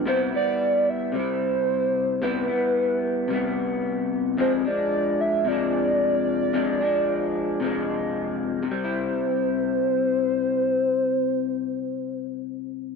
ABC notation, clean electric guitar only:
X:1
M:4/4
L:1/8
Q:"Swing 16ths" 1/4=111
K:C
V:1 name="Clean electric guitar" clef=bass
[C,G,B,E] [G,B,E]3 [C,G,E]4 | [C,G,B,E] [G,B,E]3 [C,G,B,E]4 | [F,,C,F,_A,D] [F,A,D]3 [C,F,A,D]4 | [F,,C,F,_A,D] [F,A,D]3 [C,F,A,D]4 |
[C,G,E]8- | [C,G,E]8 |]